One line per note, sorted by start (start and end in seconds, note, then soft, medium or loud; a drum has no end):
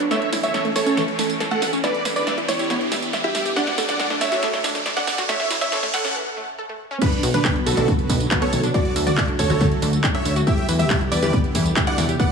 0.00 0.10 D4 loud
0.00 closed hi-hat soft
0.00 riser medium
0.11 1.82 E3 medium
0.11 0.17 A3 loud
0.11 1.82 A3 medium
0.11 1.82 C#4 medium
0.11 1.82 A4 medium
0.11 0.30 C#5 medium
0.11 1.82 C#5 medium
0.11 0.30 E5 loud
0.11 0.31 E5 loud
0.11 snare medium
0.11 closed hi-hat soft
0.11 tambourine soft
0.22 closed hi-hat soft
0.32 0.42 E4 medium
0.32 snare medium
0.32 open hi-hat loud
0.32 tambourine medium
0.43 0.63 C#5 medium
0.43 0.63 E5 loud
0.43 0.63 E5 medium
0.43 closed hi-hat medium
0.43 mid tom medium
0.43 tambourine soft
0.54 0.61 A4 medium
0.54 snare medium
0.54 closed hi-hat soft
0.54 tambourine soft
0.65 0.69 A3 medium
0.65 closed hi-hat soft
0.76 1.02 A4 medium
0.76 1.02 C#5 medium
0.76 snare medium
0.76 open hi-hat medium
0.76 tambourine medium
0.86 0.96 C#4 loud
0.86 closed hi-hat medium
0.86 tambourine soft
0.97 1.04 E3 medium
0.97 snare medium
0.97 closed hi-hat soft
0.97 tambourine soft
1.08 closed hi-hat soft
1.19 1.23 A3 medium
1.19 snare medium
1.19 open hi-hat loud
1.19 tambourine medium
1.30 closed hi-hat soft
1.30 tambourine soft
1.40 1.47 A4 medium
1.40 snare medium
1.40 closed hi-hat soft
1.40 tambourine soft
1.51 1.55 A3 medium
1.51 1.71 A4 medium
1.51 1.71 F#5 loud
1.51 1.71 F#5 medium
1.51 closed hi-hat soft
1.62 snare medium
1.62 open hi-hat medium
1.62 mid tom medium
1.62 tambourine medium
1.73 1.83 C#4 loud
1.73 closed hi-hat soft
1.73 tambourine soft
1.84 3.55 E3 medium
1.84 3.55 B3 medium
1.84 5.26 D4 medium
1.84 1.90 E4 loud
1.84 3.55 G4 medium
1.84 2.03 B4 medium
1.84 2.03 D5 loud
1.84 5.26 D5 medium
1.84 2.03 D5 loud
1.84 snare medium
1.84 closed hi-hat soft
1.84 tambourine soft
1.94 closed hi-hat soft
2.05 2.15 B4 medium
2.05 snare medium
2.05 open hi-hat loud
2.05 tambourine medium
2.16 2.36 B4 medium
2.16 2.36 D5 medium
2.16 2.36 D5 loud
2.16 closed hi-hat medium
2.16 mid tom medium
2.16 tambourine soft
2.27 2.33 E5 medium
2.27 snare medium
2.27 closed hi-hat soft
2.27 tambourine soft
2.38 2.42 E4 medium
2.38 closed hi-hat soft
2.48 2.75 E4 medium
2.48 2.75 C#5 medium
2.48 snare medium
2.48 open hi-hat medium
2.48 tambourine medium
2.59 2.69 G4 medium
2.59 closed hi-hat soft
2.59 tambourine soft
2.70 2.77 B3 loud
2.70 snare medium
2.70 closed hi-hat medium
2.70 tambourine soft
2.81 closed hi-hat soft
2.92 2.96 E4 medium
2.92 snare medium
2.92 open hi-hat loud
2.92 tambourine medium
3.02 closed hi-hat soft
3.02 tambourine soft
3.13 3.20 E5 medium
3.13 snare medium
3.13 closed hi-hat medium
3.13 tambourine soft
3.24 3.28 E4 medium
3.24 3.44 G4 medium
3.24 3.44 E5 medium
3.24 3.44 E5 loud
3.24 closed hi-hat soft
3.35 snare medium
3.35 open hi-hat medium
3.35 tambourine medium
3.46 3.55 G4 loud
3.46 closed hi-hat soft
3.46 tambourine soft
3.56 5.27 F#3 medium
3.56 6.13 A3 medium
3.56 3.63 D4 loud
3.56 6.13 A4 medium
3.56 3.76 D5 medium
3.56 3.76 F#5 loud
3.56 snare medium
3.56 closed hi-hat medium
3.56 tambourine soft
3.67 snare medium
3.67 closed hi-hat soft
3.78 3.88 A4 medium
3.78 snare medium
3.78 open hi-hat loud
3.78 tambourine medium
3.89 4.08 D5 medium
3.89 4.08 F#5 loud
3.89 4.08 F#5 medium
3.89 snare medium
3.89 closed hi-hat medium
3.89 mid tom medium
3.89 tambourine soft
3.99 4.06 D5 medium
3.99 snare medium
3.99 closed hi-hat medium
3.99 tambourine soft
4.10 4.14 D4 medium
4.10 snare medium
4.10 closed hi-hat soft
4.21 4.47 C#5 medium
4.21 4.47 E5 medium
4.21 snare loud
4.21 open hi-hat medium
4.21 tambourine medium
4.32 4.42 F#4 loud
4.32 snare medium
4.32 closed hi-hat medium
4.32 tambourine soft
4.43 4.49 A3 loud
4.43 snare loud
4.43 closed hi-hat medium
4.43 tambourine soft
4.53 snare medium
4.53 closed hi-hat soft
4.64 4.68 D4 medium
4.64 snare loud
4.64 open hi-hat loud
4.64 tambourine medium
4.75 snare medium
4.75 closed hi-hat medium
4.75 tambourine soft
4.86 4.92 D5 medium
4.86 snare loud
4.86 closed hi-hat medium
4.86 tambourine soft
4.96 5.01 D4 medium
4.96 5.16 D5 medium
4.96 5.16 F#5 loud
4.96 5.16 F#5 medium
4.96 snare medium
4.96 closed hi-hat soft
5.07 snare loud
5.07 open hi-hat medium
5.07 mid tom medium
5.07 tambourine medium
5.18 5.28 F#4 loud
5.18 snare medium
5.18 closed hi-hat medium
5.18 tambourine soft
5.29 6.14 E3 medium
5.29 5.35 A3 loud
5.29 6.14 C#4 medium
5.29 6.14 C#5 medium
5.29 5.49 C#5 medium
5.29 5.49 E5 loud
5.29 snare loud
5.29 closed hi-hat medium
5.29 tambourine soft
5.40 snare medium
5.40 closed hi-hat soft
5.50 5.60 E4 medium
5.50 snare loud
5.50 open hi-hat loud
5.50 tambourine medium
5.61 5.81 C#5 medium
5.61 5.81 E5 medium
5.61 5.81 E5 loud
5.61 snare medium
5.61 closed hi-hat medium
5.61 mid tom medium
5.61 tambourine soft
5.72 5.79 A4 medium
5.72 snare loud
5.72 closed hi-hat medium
5.72 tambourine soft
5.83 5.87 A3 medium
5.83 snare medium
5.83 closed hi-hat soft
5.94 6.15 A4 medium
5.94 6.15 F#5 medium
5.94 6.15 F#5 loud
5.94 snare loud
5.94 open hi-hat medium
5.94 tambourine medium
6.04 6.14 C#4 loud
6.04 snare medium
6.04 closed hi-hat medium
6.04 mid tom medium
6.04 tambourine soft
6.15 6.22 E3 loud
6.37 6.41 A3 medium
6.58 6.65 A4 medium
6.69 6.73 A3 medium
6.91 7.01 C#4 loud
7.02 8.73 D3 medium
7.02 8.73 F#3 medium
7.02 7.08 B3 loud
7.02 8.73 B3 medium
7.02 7.21 D4 medium
7.02 10.44 F#4 medium
7.02 7.21 B4 loud
7.02 8.73 B4 medium
7.02 7.21 B4 loud
7.02 kick loud
7.02 closed hi-hat medium
7.02 tambourine soft
7.02 crash loud
7.12 closed hi-hat soft
7.23 7.39 B1 loud
7.23 7.33 F#4 medium
7.23 open hi-hat loud
7.23 tambourine medium
7.34 7.54 D4 medium
7.34 7.54 B4 medium
7.34 closed hi-hat medium
7.34 mid tom medium
7.34 tambourine soft
7.45 7.51 B4 medium
7.45 kick loud
7.45 clap loud
7.45 closed hi-hat medium
7.45 tambourine soft
7.56 7.60 B3 medium
7.56 closed hi-hat soft
7.66 7.74 B1 medium
7.66 7.93 F#4 medium
7.66 7.93 A4 medium
7.66 open hi-hat medium
7.66 tambourine medium
7.77 7.93 B1 medium
7.77 7.87 D4 medium
7.77 closed hi-hat medium
7.77 mid tom medium
7.77 tambourine soft
7.88 7.95 F#3 loud
7.88 kick loud
7.88 closed hi-hat medium
7.88 tambourine soft
7.99 closed hi-hat soft
8.10 8.26 B1 loud
8.10 8.13 B3 medium
8.10 kick medium
8.10 open hi-hat loud
8.10 tambourine medium
8.20 closed hi-hat medium
8.20 tambourine soft
8.31 8.38 B4 medium
8.31 kick loud
8.31 clap loud
8.31 closed hi-hat medium
8.31 tambourine soft
8.42 8.46 B3 medium
8.42 8.62 A4 medium
8.42 8.62 C#5 loud
8.42 8.62 C#5 medium
8.42 closed hi-hat soft
8.53 8.69 B1 medium
8.53 open hi-hat medium
8.53 mid tom medium
8.53 tambourine medium
8.63 8.73 D4 loud
8.63 closed hi-hat medium
8.63 tambourine soft
8.74 12.32 D3 medium
8.74 10.45 F#3 medium
8.74 10.45 A3 medium
8.74 8.81 D4 loud
8.74 8.94 F#4 medium
8.74 10.45 A4 medium
8.74 8.94 D5 loud
8.74 kick loud
8.74 closed hi-hat medium
8.74 tambourine soft
8.85 closed hi-hat soft
8.96 9.12 D2 loud
8.96 9.06 A4 medium
8.96 open hi-hat loud
8.96 tambourine medium
9.07 9.26 F#4 medium
9.07 9.26 D5 loud
9.07 9.26 D5 medium
9.07 closed hi-hat medium
9.07 mid tom medium
9.07 tambourine soft
9.17 9.24 D5 medium
9.17 kick loud
9.17 clap loud
9.17 closed hi-hat soft
9.17 tambourine soft
9.28 9.32 D4 medium
9.28 closed hi-hat soft
9.39 9.47 D2 medium
9.39 9.65 A4 medium
9.39 9.65 C#5 medium
9.39 9.65 C#5 loud
9.39 kick medium
9.39 open hi-hat loud
9.39 tambourine medium
9.50 9.66 D2 loud
9.50 9.60 F#4 loud
9.50 closed hi-hat medium
9.50 mid tom medium
9.50 tambourine soft
9.61 9.67 A3 medium
9.61 kick loud
9.61 closed hi-hat medium
9.61 tambourine soft
9.71 closed hi-hat soft
9.82 9.98 D2 loud
9.82 9.86 D4 medium
9.82 open hi-hat loud
9.82 tambourine medium
9.93 closed hi-hat medium
9.93 tambourine soft
10.04 10.10 D5 medium
10.04 kick loud
10.04 clap loud
10.04 closed hi-hat medium
10.04 tambourine soft
10.15 10.18 D4 medium
10.15 10.34 C#5 medium
10.15 10.34 E5 medium
10.15 10.34 E5 loud
10.15 closed hi-hat soft
10.25 10.41 D2 medium
10.25 open hi-hat medium
10.25 tambourine medium
10.36 10.46 F#4 loud
10.36 closed hi-hat medium
10.36 tambourine soft
10.47 12.18 G3 medium
10.47 12.32 B3 medium
10.47 12.18 E4 medium
10.47 10.53 E4 loud
10.47 10.67 G4 medium
10.47 12.18 G4 medium
10.47 10.67 E5 loud
10.47 kick loud
10.47 closed hi-hat medium
10.47 tambourine soft
10.58 closed hi-hat soft
10.69 10.84 E2 loud
10.69 10.78 B4 medium
10.69 open hi-hat loud
10.69 tambourine medium
10.79 10.99 G4 medium
10.79 10.99 E5 loud
10.79 10.99 E5 medium
10.79 closed hi-hat medium
10.79 mid tom medium
10.79 tambourine soft
10.90 10.97 E5 medium
10.90 kick loud
10.90 clap loud
10.90 closed hi-hat medium
10.90 tambourine soft
11.01 11.05 E4 medium
11.01 closed hi-hat soft
11.11 11.20 E2 medium
11.11 11.38 B4 medium
11.11 11.38 D5 medium
11.11 11.38 D5 loud
11.11 open hi-hat loud
11.11 tambourine medium
11.22 11.38 E2 loud
11.22 11.32 G4 loud
11.22 closed hi-hat medium
11.22 mid tom medium
11.22 tambourine soft
11.33 11.40 B3 loud
11.33 kick loud
11.33 closed hi-hat medium
11.33 tambourine soft
11.44 closed hi-hat soft
11.55 11.71 E2 loud
11.55 11.59 E4 medium
11.55 kick medium
11.55 open hi-hat loud
11.55 tambourine medium
11.66 closed hi-hat medium
11.66 tambourine soft
11.76 11.83 E5 medium
11.76 kick loud
11.76 clap loud
11.76 closed hi-hat medium
11.76 tambourine soft
11.87 11.91 E4 medium
11.87 12.07 D5 medium
11.87 12.07 F#5 medium
11.87 12.07 F#5 loud
11.87 closed hi-hat soft
11.98 12.14 E2 medium
11.98 open hi-hat medium
11.98 mid tom medium
11.98 tambourine medium
12.09 12.19 G4 loud
12.09 closed hi-hat soft
12.09 tambourine soft
12.19 12.32 F#3 medium
12.19 12.26 B3 loud
12.19 12.32 F#4 medium
12.19 12.32 B4 medium
12.19 12.32 D5 medium
12.19 12.32 F#5 loud
12.19 kick loud
12.19 closed hi-hat medium
12.19 tambourine soft